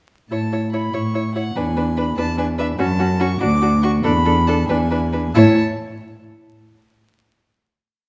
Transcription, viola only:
0, 0, Header, 1, 2, 480
1, 0, Start_track
1, 0, Key_signature, 3, "major"
1, 0, Tempo, 414651
1, 367, Time_signature, 6, 3, 24, 8
1, 4683, Tempo, 431034
1, 9178, End_track
2, 0, Start_track
2, 0, Title_t, "Viola"
2, 0, Program_c, 0, 41
2, 359, Note_on_c, 0, 64, 34
2, 452, Note_off_c, 0, 64, 0
2, 605, Note_on_c, 0, 64, 31
2, 697, Note_off_c, 0, 64, 0
2, 848, Note_on_c, 0, 64, 32
2, 941, Note_off_c, 0, 64, 0
2, 1086, Note_on_c, 0, 64, 36
2, 1179, Note_off_c, 0, 64, 0
2, 1321, Note_on_c, 0, 64, 35
2, 1414, Note_off_c, 0, 64, 0
2, 1565, Note_on_c, 0, 64, 36
2, 1657, Note_off_c, 0, 64, 0
2, 1807, Note_on_c, 0, 62, 44
2, 1899, Note_off_c, 0, 62, 0
2, 2045, Note_on_c, 0, 62, 39
2, 2138, Note_off_c, 0, 62, 0
2, 2277, Note_on_c, 0, 62, 42
2, 2370, Note_off_c, 0, 62, 0
2, 2520, Note_on_c, 0, 62, 49
2, 2612, Note_off_c, 0, 62, 0
2, 2750, Note_on_c, 0, 62, 48
2, 2843, Note_off_c, 0, 62, 0
2, 2990, Note_on_c, 0, 62, 48
2, 3082, Note_off_c, 0, 62, 0
2, 3227, Note_on_c, 0, 61, 64
2, 3319, Note_off_c, 0, 61, 0
2, 3470, Note_on_c, 0, 61, 53
2, 3562, Note_off_c, 0, 61, 0
2, 3706, Note_on_c, 0, 61, 56
2, 3798, Note_off_c, 0, 61, 0
2, 3946, Note_on_c, 0, 62, 66
2, 4039, Note_off_c, 0, 62, 0
2, 4192, Note_on_c, 0, 62, 58
2, 4285, Note_off_c, 0, 62, 0
2, 4434, Note_on_c, 0, 62, 50
2, 4526, Note_off_c, 0, 62, 0
2, 4681, Note_on_c, 0, 62, 66
2, 4770, Note_off_c, 0, 62, 0
2, 4918, Note_on_c, 0, 62, 54
2, 5008, Note_off_c, 0, 62, 0
2, 5160, Note_on_c, 0, 62, 53
2, 5249, Note_off_c, 0, 62, 0
2, 5408, Note_on_c, 0, 62, 59
2, 5498, Note_off_c, 0, 62, 0
2, 5651, Note_on_c, 0, 62, 50
2, 5741, Note_off_c, 0, 62, 0
2, 5893, Note_on_c, 0, 62, 43
2, 5983, Note_off_c, 0, 62, 0
2, 6131, Note_on_c, 0, 64, 68
2, 6398, Note_off_c, 0, 64, 0
2, 9178, End_track
0, 0, End_of_file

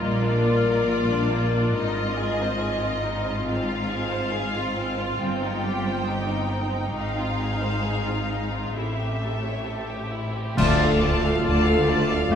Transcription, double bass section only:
0, 0, Header, 1, 2, 480
1, 0, Start_track
1, 0, Tempo, 864553
1, 19, Time_signature, 4, 2, 24, 8
1, 3860, Tempo, 907716
1, 5780, Tempo, 870827
1, 6754, End_track
2, 0, Start_track
2, 0, Title_t, "Double bass section"
2, 0, Program_c, 0, 48
2, 21, Note_on_c, 0, 34, 64
2, 956, Note_off_c, 0, 34, 0
2, 976, Note_on_c, 0, 32, 63
2, 2869, Note_off_c, 0, 32, 0
2, 2887, Note_on_c, 0, 31, 63
2, 3836, Note_off_c, 0, 31, 0
2, 3856, Note_on_c, 0, 32, 56
2, 4794, Note_off_c, 0, 32, 0
2, 4808, Note_on_c, 0, 33, 49
2, 5649, Note_off_c, 0, 33, 0
2, 5776, Note_on_c, 0, 38, 92
2, 6202, Note_off_c, 0, 38, 0
2, 6258, Note_on_c, 0, 38, 84
2, 6680, Note_off_c, 0, 38, 0
2, 6734, Note_on_c, 0, 29, 92
2, 6754, Note_off_c, 0, 29, 0
2, 6754, End_track
0, 0, End_of_file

